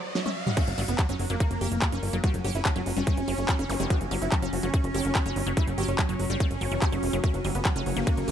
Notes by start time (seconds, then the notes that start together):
Already playing: riser
0.15 F#3, snare
0.26 C#4, high tom
0.47 G3, mid tom
0.57 F#3 C#4, kick, closed hi-hat, crash
0.67 F#1 F#3, closed hi-hat
0.78 G1 F#3 G3, open hi-hat
0.88 F#1 B3, closed hi-hat
0.99 F#3, kick, clap, closed hi-hat
1.09 F#1 F#3 C#4, closed hi-hat
1.19 F#1 F#3, open hi-hat
1.30 F#1 F#3 A#3, closed hi-hat
1.40 F#4, kick, closed hi-hat
1.51 F#1, closed hi-hat
1.61 F#1 G4, open hi-hat
1.72 F#1, closed hi-hat
1.82 F#3, kick, clap, closed hi-hat
1.92 F#1 C#4, closed hi-hat
2.03 G1, open hi-hat
2.13 F#1 F#3, closed hi-hat
2.24 G3 F#4, kick, closed hi-hat
2.34 F#1 F#3, closed hi-hat
2.44 G1 F#3 G4, open hi-hat
2.55 F#1 E4, closed hi-hat
2.65 F#3, kick, clap, closed hi-hat
2.76 F#1 F#3, closed hi-hat
2.86 F#1 F#3, open hi-hat
2.97 F#1 G3 C#4, closed hi-hat
3.07 G3, kick, closed hi-hat
3.17 F#1, closed hi-hat
3.28 F#1 F#3, open hi-hat
3.38 F#1, closed hi-hat
3.49 F#3, kick, clap, closed hi-hat
3.59 F#1 C#4, closed hi-hat
3.70 G1, open hi-hat, zap
3.80 F#1 G3, closed hi-hat
3.90 F#3 F#4, kick, closed hi-hat
4.01 F#1 F#3, closed hi-hat
4.11 G1 F#3 G3, open hi-hat
4.22 F#1 E4, closed hi-hat
4.32 F#3, kick, clap, closed hi-hat
4.42 F#1 F#3 C#4, closed hi-hat
4.53 F#1 F#3, open hi-hat
4.63 F#1 F#3 C#4, closed hi-hat
4.74 F#4, kick, closed hi-hat
4.84 F#1, closed hi-hat
4.95 F#1 G4, open hi-hat
5.05 F#1, closed hi-hat
5.15 F#3, kick, clap, closed hi-hat
5.26 F#1 C#4, closed hi-hat
5.36 G1, open hi-hat
5.47 F#1 F#3, closed hi-hat
5.57 G3 E4, kick, closed hi-hat
5.67 F#1 F#3, closed hi-hat
5.78 G1 F#3 G4, open hi-hat
5.88 F#1 C#4, closed hi-hat
5.99 F#3, kick, clap, closed hi-hat
6.09 F#1 F#3, closed hi-hat
6.19 F#1 F#3, open hi-hat
6.30 F#1 G3 C#4, closed hi-hat
6.40 G3, kick, closed hi-hat
6.51 F#1, closed hi-hat
6.61 F#1 F#3, open hi-hat
6.72 F#1 E3, closed hi-hat
6.82 G4, kick, clap, closed hi-hat
6.92 F#1 F#3, closed hi-hat
7.03 E1, open hi-hat
7.13 F#1 F#3, closed hi-hat
7.24 F#3 C#4, kick, closed hi-hat
7.34 F#1 F#3, closed hi-hat
7.44 G1 F#3 G3, open hi-hat
7.55 F#1 B3, closed hi-hat
7.65 F#3, kick, clap, closed hi-hat
7.76 F#1 F#3 C#4, closed hi-hat
7.86 F#1 F#3 A#3, open hi-hat
7.97 F#1 F#3 A#3, closed hi-hat
8.07 F#4, kick, closed hi-hat
8.17 F#1, closed hi-hat
8.28 F#1 G4, open hi-hat